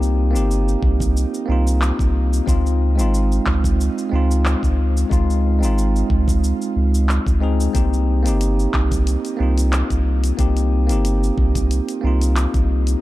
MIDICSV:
0, 0, Header, 1, 4, 480
1, 0, Start_track
1, 0, Tempo, 659341
1, 1802, Time_signature, 4, 2, 24, 8
1, 9473, End_track
2, 0, Start_track
2, 0, Title_t, "Tine electric piano"
2, 0, Program_c, 0, 4
2, 0, Control_c, 0, 64, 127
2, 0, Note_on_c, 0, 58, 78
2, 0, Note_on_c, 0, 60, 66
2, 0, Note_on_c, 0, 63, 71
2, 0, Note_on_c, 0, 65, 84
2, 0, Note_on_c, 0, 67, 84
2, 213, Note_off_c, 0, 58, 0
2, 217, Note_off_c, 0, 60, 0
2, 220, Note_off_c, 0, 63, 0
2, 223, Note_off_c, 0, 67, 0
2, 225, Note_on_c, 0, 58, 78
2, 240, Note_on_c, 0, 60, 67
2, 251, Note_on_c, 0, 63, 68
2, 266, Note_on_c, 0, 67, 78
2, 1042, Note_off_c, 0, 58, 0
2, 1050, Note_off_c, 0, 60, 0
2, 1055, Note_off_c, 0, 63, 0
2, 1062, Note_on_c, 0, 58, 78
2, 1063, Note_off_c, 0, 67, 0
2, 1076, Note_on_c, 0, 60, 72
2, 1090, Note_on_c, 0, 63, 73
2, 1104, Note_off_c, 0, 65, 0
2, 1104, Note_on_c, 0, 65, 83
2, 1765, Note_off_c, 0, 58, 0
2, 1772, Note_off_c, 0, 60, 0
2, 1779, Note_off_c, 0, 63, 0
2, 1786, Note_off_c, 0, 65, 0
2, 1791, Note_on_c, 0, 56, 74
2, 1796, Note_on_c, 0, 60, 73
2, 1802, Note_on_c, 0, 63, 69
2, 1810, Control_c, 0, 64, 0
2, 1810, Note_on_c, 0, 65, 90
2, 1947, Control_c, 0, 64, 127
2, 2134, Note_off_c, 0, 56, 0
2, 2137, Note_off_c, 0, 60, 0
2, 2140, Note_off_c, 0, 63, 0
2, 2144, Note_off_c, 0, 65, 0
2, 2151, Note_on_c, 0, 56, 73
2, 2165, Note_on_c, 0, 60, 71
2, 2178, Note_on_c, 0, 63, 66
2, 2191, Note_on_c, 0, 65, 89
2, 2965, Note_off_c, 0, 56, 0
2, 2972, Note_off_c, 0, 60, 0
2, 2979, Note_off_c, 0, 63, 0
2, 2982, Note_on_c, 0, 56, 80
2, 2985, Note_off_c, 0, 65, 0
2, 2995, Note_on_c, 0, 60, 68
2, 3010, Note_on_c, 0, 63, 65
2, 3024, Note_on_c, 0, 65, 88
2, 3685, Note_off_c, 0, 56, 0
2, 3692, Note_off_c, 0, 60, 0
2, 3699, Note_off_c, 0, 63, 0
2, 3706, Note_off_c, 0, 65, 0
2, 3710, Note_on_c, 0, 56, 77
2, 3716, Note_on_c, 0, 60, 70
2, 3725, Note_on_c, 0, 63, 70
2, 3731, Note_on_c, 0, 65, 88
2, 4054, Note_off_c, 0, 56, 0
2, 4057, Note_off_c, 0, 60, 0
2, 4061, Note_off_c, 0, 63, 0
2, 4064, Note_off_c, 0, 65, 0
2, 4069, Note_on_c, 0, 56, 76
2, 4082, Note_on_c, 0, 60, 73
2, 4096, Note_on_c, 0, 63, 75
2, 4110, Note_on_c, 0, 65, 82
2, 4884, Note_off_c, 0, 56, 0
2, 4891, Note_off_c, 0, 60, 0
2, 4898, Note_off_c, 0, 63, 0
2, 4905, Note_off_c, 0, 65, 0
2, 5392, Note_on_c, 0, 56, 89
2, 5398, Note_on_c, 0, 60, 81
2, 5406, Note_on_c, 0, 63, 81
2, 5413, Note_on_c, 0, 68, 95
2, 5487, Note_off_c, 0, 56, 0
2, 5491, Note_off_c, 0, 60, 0
2, 5494, Note_off_c, 0, 63, 0
2, 5498, Note_off_c, 0, 68, 0
2, 5630, Note_on_c, 0, 58, 76
2, 5637, Note_on_c, 0, 60, 71
2, 5644, Note_on_c, 0, 63, 67
2, 5650, Note_on_c, 0, 67, 84
2, 5652, Control_c, 0, 64, 0
2, 5785, Control_c, 0, 64, 127
2, 5974, Note_off_c, 0, 58, 0
2, 5977, Note_off_c, 0, 60, 0
2, 5981, Note_off_c, 0, 63, 0
2, 5984, Note_off_c, 0, 67, 0
2, 5989, Note_on_c, 0, 58, 79
2, 6003, Note_on_c, 0, 60, 70
2, 6018, Note_on_c, 0, 63, 74
2, 6032, Note_on_c, 0, 67, 86
2, 6804, Note_off_c, 0, 58, 0
2, 6811, Note_off_c, 0, 60, 0
2, 6819, Note_off_c, 0, 63, 0
2, 6820, Note_on_c, 0, 58, 73
2, 6826, Note_off_c, 0, 67, 0
2, 6834, Note_on_c, 0, 60, 65
2, 6847, Note_on_c, 0, 63, 67
2, 6863, Note_on_c, 0, 65, 77
2, 7524, Note_off_c, 0, 58, 0
2, 7531, Note_off_c, 0, 60, 0
2, 7538, Note_off_c, 0, 63, 0
2, 7545, Note_off_c, 0, 65, 0
2, 7552, Note_on_c, 0, 58, 72
2, 7560, Note_on_c, 0, 60, 69
2, 7566, Note_on_c, 0, 63, 69
2, 7573, Note_on_c, 0, 67, 90
2, 7895, Note_off_c, 0, 58, 0
2, 7899, Note_off_c, 0, 60, 0
2, 7902, Note_off_c, 0, 63, 0
2, 7905, Note_off_c, 0, 67, 0
2, 7911, Note_on_c, 0, 58, 79
2, 7925, Note_on_c, 0, 60, 70
2, 7939, Note_on_c, 0, 63, 68
2, 7952, Note_on_c, 0, 67, 81
2, 8726, Note_off_c, 0, 58, 0
2, 8732, Note_off_c, 0, 60, 0
2, 8739, Note_off_c, 0, 63, 0
2, 8744, Note_on_c, 0, 58, 72
2, 8746, Note_off_c, 0, 67, 0
2, 8756, Note_on_c, 0, 60, 68
2, 8772, Note_on_c, 0, 63, 70
2, 8786, Note_on_c, 0, 65, 85
2, 9446, Note_off_c, 0, 58, 0
2, 9452, Note_off_c, 0, 60, 0
2, 9460, Note_off_c, 0, 63, 0
2, 9467, Note_off_c, 0, 65, 0
2, 9473, End_track
3, 0, Start_track
3, 0, Title_t, "Sub bass"
3, 0, Program_c, 1, 38
3, 0, Note_on_c, 1, 36, 97
3, 251, Note_on_c, 1, 31, 96
3, 261, Note_off_c, 1, 36, 0
3, 553, Note_off_c, 1, 31, 0
3, 601, Note_on_c, 1, 36, 101
3, 913, Note_off_c, 1, 36, 0
3, 1083, Note_on_c, 1, 36, 94
3, 1395, Note_off_c, 1, 36, 0
3, 1452, Note_on_c, 1, 36, 97
3, 1754, Note_off_c, 1, 36, 0
3, 1803, Note_on_c, 1, 37, 103
3, 2171, Note_on_c, 1, 32, 103
3, 2182, Note_off_c, 1, 37, 0
3, 2473, Note_off_c, 1, 32, 0
3, 2522, Note_on_c, 1, 37, 104
3, 2834, Note_off_c, 1, 37, 0
3, 3004, Note_on_c, 1, 37, 94
3, 3315, Note_off_c, 1, 37, 0
3, 3372, Note_on_c, 1, 37, 95
3, 3673, Note_off_c, 1, 37, 0
3, 3722, Note_on_c, 1, 37, 99
3, 4091, Note_on_c, 1, 32, 99
3, 4102, Note_off_c, 1, 37, 0
3, 4393, Note_off_c, 1, 32, 0
3, 4441, Note_on_c, 1, 37, 112
3, 4754, Note_off_c, 1, 37, 0
3, 4924, Note_on_c, 1, 37, 94
3, 5235, Note_off_c, 1, 37, 0
3, 5289, Note_on_c, 1, 37, 97
3, 5592, Note_off_c, 1, 37, 0
3, 5641, Note_on_c, 1, 36, 96
3, 6011, Note_on_c, 1, 31, 102
3, 6022, Note_off_c, 1, 36, 0
3, 6313, Note_off_c, 1, 31, 0
3, 6361, Note_on_c, 1, 36, 103
3, 6674, Note_off_c, 1, 36, 0
3, 6844, Note_on_c, 1, 36, 95
3, 7155, Note_off_c, 1, 36, 0
3, 7211, Note_on_c, 1, 36, 94
3, 7513, Note_off_c, 1, 36, 0
3, 7562, Note_on_c, 1, 36, 103
3, 7932, Note_on_c, 1, 31, 99
3, 7943, Note_off_c, 1, 36, 0
3, 8234, Note_off_c, 1, 31, 0
3, 8282, Note_on_c, 1, 36, 103
3, 8594, Note_off_c, 1, 36, 0
3, 8764, Note_on_c, 1, 36, 100
3, 9075, Note_off_c, 1, 36, 0
3, 9131, Note_on_c, 1, 36, 100
3, 9433, Note_off_c, 1, 36, 0
3, 9473, End_track
4, 0, Start_track
4, 0, Title_t, "Drums"
4, 19, Note_on_c, 9, 69, 33
4, 92, Note_off_c, 9, 69, 0
4, 260, Note_on_c, 9, 69, 68
4, 333, Note_off_c, 9, 69, 0
4, 371, Note_on_c, 9, 69, 57
4, 444, Note_off_c, 9, 69, 0
4, 499, Note_on_c, 9, 69, 36
4, 572, Note_off_c, 9, 69, 0
4, 601, Note_on_c, 9, 36, 106
4, 674, Note_off_c, 9, 36, 0
4, 730, Note_on_c, 9, 36, 107
4, 739, Note_on_c, 9, 69, 67
4, 803, Note_off_c, 9, 36, 0
4, 812, Note_off_c, 9, 69, 0
4, 851, Note_on_c, 9, 69, 59
4, 924, Note_off_c, 9, 69, 0
4, 978, Note_on_c, 9, 69, 35
4, 1051, Note_off_c, 9, 69, 0
4, 1218, Note_on_c, 9, 69, 62
4, 1290, Note_off_c, 9, 69, 0
4, 1322, Note_on_c, 9, 39, 83
4, 1329, Note_on_c, 9, 69, 57
4, 1395, Note_off_c, 9, 39, 0
4, 1402, Note_off_c, 9, 69, 0
4, 1451, Note_on_c, 9, 36, 114
4, 1459, Note_on_c, 9, 69, 34
4, 1524, Note_off_c, 9, 36, 0
4, 1532, Note_off_c, 9, 69, 0
4, 1699, Note_on_c, 9, 69, 67
4, 1771, Note_off_c, 9, 69, 0
4, 1802, Note_on_c, 9, 36, 119
4, 1809, Note_on_c, 9, 69, 62
4, 1875, Note_off_c, 9, 36, 0
4, 1882, Note_off_c, 9, 69, 0
4, 1940, Note_on_c, 9, 69, 33
4, 2012, Note_off_c, 9, 69, 0
4, 2178, Note_on_c, 9, 69, 73
4, 2250, Note_off_c, 9, 69, 0
4, 2288, Note_on_c, 9, 69, 57
4, 2361, Note_off_c, 9, 69, 0
4, 2418, Note_on_c, 9, 69, 36
4, 2491, Note_off_c, 9, 69, 0
4, 2522, Note_on_c, 9, 36, 108
4, 2522, Note_on_c, 9, 39, 82
4, 2595, Note_off_c, 9, 36, 0
4, 2595, Note_off_c, 9, 39, 0
4, 2651, Note_on_c, 9, 36, 119
4, 2658, Note_on_c, 9, 69, 70
4, 2724, Note_off_c, 9, 36, 0
4, 2731, Note_off_c, 9, 69, 0
4, 2771, Note_on_c, 9, 69, 61
4, 2844, Note_off_c, 9, 69, 0
4, 2900, Note_on_c, 9, 69, 33
4, 2972, Note_off_c, 9, 69, 0
4, 3139, Note_on_c, 9, 69, 68
4, 3212, Note_off_c, 9, 69, 0
4, 3243, Note_on_c, 9, 39, 79
4, 3250, Note_on_c, 9, 69, 55
4, 3316, Note_off_c, 9, 39, 0
4, 3323, Note_off_c, 9, 69, 0
4, 3371, Note_on_c, 9, 36, 67
4, 3379, Note_on_c, 9, 69, 34
4, 3444, Note_off_c, 9, 36, 0
4, 3452, Note_off_c, 9, 69, 0
4, 3620, Note_on_c, 9, 69, 65
4, 3692, Note_off_c, 9, 69, 0
4, 3722, Note_on_c, 9, 36, 118
4, 3731, Note_on_c, 9, 69, 56
4, 3795, Note_off_c, 9, 36, 0
4, 3804, Note_off_c, 9, 69, 0
4, 3860, Note_on_c, 9, 69, 36
4, 3933, Note_off_c, 9, 69, 0
4, 4100, Note_on_c, 9, 69, 68
4, 4172, Note_off_c, 9, 69, 0
4, 4211, Note_on_c, 9, 69, 57
4, 4283, Note_off_c, 9, 69, 0
4, 4339, Note_on_c, 9, 69, 33
4, 4412, Note_off_c, 9, 69, 0
4, 4441, Note_on_c, 9, 36, 106
4, 4514, Note_off_c, 9, 36, 0
4, 4570, Note_on_c, 9, 36, 112
4, 4578, Note_on_c, 9, 69, 66
4, 4643, Note_off_c, 9, 36, 0
4, 4651, Note_off_c, 9, 69, 0
4, 4688, Note_on_c, 9, 69, 60
4, 4761, Note_off_c, 9, 69, 0
4, 4817, Note_on_c, 9, 69, 34
4, 4890, Note_off_c, 9, 69, 0
4, 5057, Note_on_c, 9, 69, 64
4, 5129, Note_off_c, 9, 69, 0
4, 5162, Note_on_c, 9, 39, 76
4, 5169, Note_on_c, 9, 69, 53
4, 5235, Note_off_c, 9, 39, 0
4, 5242, Note_off_c, 9, 69, 0
4, 5289, Note_on_c, 9, 36, 104
4, 5297, Note_on_c, 9, 69, 33
4, 5362, Note_off_c, 9, 36, 0
4, 5370, Note_off_c, 9, 69, 0
4, 5536, Note_on_c, 9, 69, 65
4, 5609, Note_off_c, 9, 69, 0
4, 5640, Note_on_c, 9, 36, 116
4, 5640, Note_on_c, 9, 42, 54
4, 5647, Note_on_c, 9, 69, 55
4, 5713, Note_off_c, 9, 36, 0
4, 5713, Note_off_c, 9, 42, 0
4, 5720, Note_off_c, 9, 69, 0
4, 5777, Note_on_c, 9, 69, 32
4, 5850, Note_off_c, 9, 69, 0
4, 6011, Note_on_c, 9, 42, 43
4, 6018, Note_on_c, 9, 69, 67
4, 6084, Note_off_c, 9, 42, 0
4, 6091, Note_off_c, 9, 69, 0
4, 6121, Note_on_c, 9, 42, 53
4, 6129, Note_on_c, 9, 69, 54
4, 6194, Note_off_c, 9, 42, 0
4, 6202, Note_off_c, 9, 69, 0
4, 6257, Note_on_c, 9, 69, 35
4, 6330, Note_off_c, 9, 69, 0
4, 6361, Note_on_c, 9, 36, 94
4, 6362, Note_on_c, 9, 39, 78
4, 6433, Note_off_c, 9, 36, 0
4, 6435, Note_off_c, 9, 39, 0
4, 6489, Note_on_c, 9, 36, 108
4, 6492, Note_on_c, 9, 42, 43
4, 6499, Note_on_c, 9, 69, 65
4, 6562, Note_off_c, 9, 36, 0
4, 6565, Note_off_c, 9, 42, 0
4, 6572, Note_off_c, 9, 69, 0
4, 6603, Note_on_c, 9, 42, 56
4, 6610, Note_on_c, 9, 69, 54
4, 6676, Note_off_c, 9, 42, 0
4, 6683, Note_off_c, 9, 69, 0
4, 6732, Note_on_c, 9, 42, 28
4, 6739, Note_on_c, 9, 69, 33
4, 6805, Note_off_c, 9, 42, 0
4, 6812, Note_off_c, 9, 69, 0
4, 6971, Note_on_c, 9, 42, 43
4, 6978, Note_on_c, 9, 69, 70
4, 7044, Note_off_c, 9, 42, 0
4, 7051, Note_off_c, 9, 69, 0
4, 7081, Note_on_c, 9, 39, 76
4, 7081, Note_on_c, 9, 42, 51
4, 7089, Note_on_c, 9, 69, 57
4, 7154, Note_off_c, 9, 39, 0
4, 7154, Note_off_c, 9, 42, 0
4, 7161, Note_off_c, 9, 69, 0
4, 7210, Note_on_c, 9, 36, 57
4, 7211, Note_on_c, 9, 42, 28
4, 7218, Note_on_c, 9, 69, 35
4, 7283, Note_off_c, 9, 36, 0
4, 7283, Note_off_c, 9, 42, 0
4, 7291, Note_off_c, 9, 69, 0
4, 7452, Note_on_c, 9, 42, 42
4, 7459, Note_on_c, 9, 69, 64
4, 7524, Note_off_c, 9, 42, 0
4, 7532, Note_off_c, 9, 69, 0
4, 7562, Note_on_c, 9, 36, 113
4, 7562, Note_on_c, 9, 42, 56
4, 7569, Note_on_c, 9, 69, 53
4, 7634, Note_off_c, 9, 36, 0
4, 7634, Note_off_c, 9, 42, 0
4, 7642, Note_off_c, 9, 69, 0
4, 7692, Note_on_c, 9, 42, 28
4, 7699, Note_on_c, 9, 69, 33
4, 7765, Note_off_c, 9, 42, 0
4, 7772, Note_off_c, 9, 69, 0
4, 7931, Note_on_c, 9, 42, 46
4, 7938, Note_on_c, 9, 69, 68
4, 8003, Note_off_c, 9, 42, 0
4, 8011, Note_off_c, 9, 69, 0
4, 8043, Note_on_c, 9, 42, 53
4, 8050, Note_on_c, 9, 69, 52
4, 8116, Note_off_c, 9, 42, 0
4, 8123, Note_off_c, 9, 69, 0
4, 8180, Note_on_c, 9, 69, 32
4, 8253, Note_off_c, 9, 69, 0
4, 8282, Note_on_c, 9, 36, 102
4, 8354, Note_off_c, 9, 36, 0
4, 8411, Note_on_c, 9, 36, 114
4, 8412, Note_on_c, 9, 42, 41
4, 8419, Note_on_c, 9, 69, 68
4, 8483, Note_off_c, 9, 36, 0
4, 8485, Note_off_c, 9, 42, 0
4, 8492, Note_off_c, 9, 69, 0
4, 8524, Note_on_c, 9, 42, 57
4, 8531, Note_on_c, 9, 69, 52
4, 8597, Note_off_c, 9, 42, 0
4, 8604, Note_off_c, 9, 69, 0
4, 8652, Note_on_c, 9, 42, 32
4, 8660, Note_on_c, 9, 69, 32
4, 8725, Note_off_c, 9, 42, 0
4, 8732, Note_off_c, 9, 69, 0
4, 8892, Note_on_c, 9, 42, 45
4, 8900, Note_on_c, 9, 69, 62
4, 8965, Note_off_c, 9, 42, 0
4, 8972, Note_off_c, 9, 69, 0
4, 9001, Note_on_c, 9, 39, 71
4, 9001, Note_on_c, 9, 42, 54
4, 9008, Note_on_c, 9, 69, 56
4, 9074, Note_off_c, 9, 39, 0
4, 9074, Note_off_c, 9, 42, 0
4, 9081, Note_off_c, 9, 69, 0
4, 9130, Note_on_c, 9, 36, 98
4, 9131, Note_on_c, 9, 42, 29
4, 9138, Note_on_c, 9, 69, 31
4, 9203, Note_off_c, 9, 36, 0
4, 9203, Note_off_c, 9, 42, 0
4, 9211, Note_off_c, 9, 69, 0
4, 9369, Note_on_c, 9, 42, 42
4, 9376, Note_on_c, 9, 69, 59
4, 9442, Note_off_c, 9, 42, 0
4, 9449, Note_off_c, 9, 69, 0
4, 9473, End_track
0, 0, End_of_file